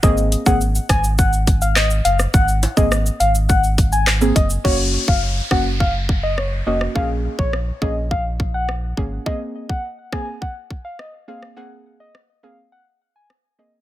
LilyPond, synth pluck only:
\new Staff \with { instrumentName = "Synth pluck" } { \time 4/4 \key aes \mixolydian \tempo 4 = 104 <bes c' aes'>8. <bes c' aes'>16 r2. | r8. <bes c' aes'>16 r2 r16 <bes c' aes'>16 r8 | <bes des' ges'>4 r8 <bes des' ges'>16 r4. r16 <bes des' ges'>8 | <bes des' aes'>4 r8 <bes des' aes'>16 r4. r16 <bes des' aes'>8 |
<bes c' aes'>4 r8 <bes c' aes'>16 r4. r16 <bes c' aes'>8 | <bes c' aes'>4 r8 <bes c' aes'>16 r4. r16 <bes c' aes'>8 | }